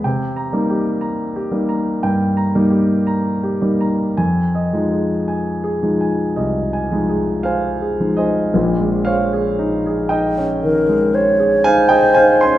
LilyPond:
<<
  \new Staff \with { instrumentName = "Alto flute" } { \time 4/4 \key bes \dorian \tempo 4 = 58 r1 | r1 | r2 bes'8 des''8 c''4 | }
  \new Staff \with { instrumentName = "Grand piano" } { \time 4/4 \key bes \dorian << { \tuplet 3/2 { g''8 bes''8 g'8 bes''8 g'8 bes''8 g''8 bes''8 g'8 bes''8 g'8 bes''8 } | \tuplet 3/2 { aes''8 ees''8 aes'8 aes''8 aes'8 aes''8 ees''8 aes''8 aes'8 aes''8 aes'8 aes''8 } | r1 | } \\ { r1 | r2. \tuplet 3/2 { <c'' f''>4 <c'' ees''>8~ } | <c'' ees''>8 <des'' f''>4 <ees'' g''>4. <f'' aes''>16 <ees'' g''>16 <f'' aes''>16 <aes'' c'''>16 | } >> }
  \new Staff \with { instrumentName = "Grand piano" } { \time 4/4 \key bes \dorian c8 <g bes ees'>4 <g bes ees'>8 g,8 <g bes ees'>4 <g bes ees'>8 | f,8 <f aes ees'>4 <f aes ees'>8 c,8 <f aes ees'>4 <f aes ees'>8 | <bes,, bes,>16 aes16 c''16 aes'16 ees'16 aes'16 ees'16 des'16 ees16 aes16 c''16 aes'16 ees'16 aes'16 ees'16 des'16 | }
>>